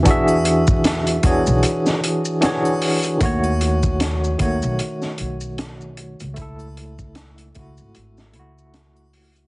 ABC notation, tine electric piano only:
X:1
M:4/4
L:1/8
Q:"Swing 16ths" 1/4=76
K:F#m
V:1 name="Tine electric piano"
[E,DFGe]3 [E,DFGc]2 z [E,DFGc]2 | [^D,A,Fc]3 [D,A,Fc] z4 | [A,EA]3 [A,EF]2 [A,EF]3 |]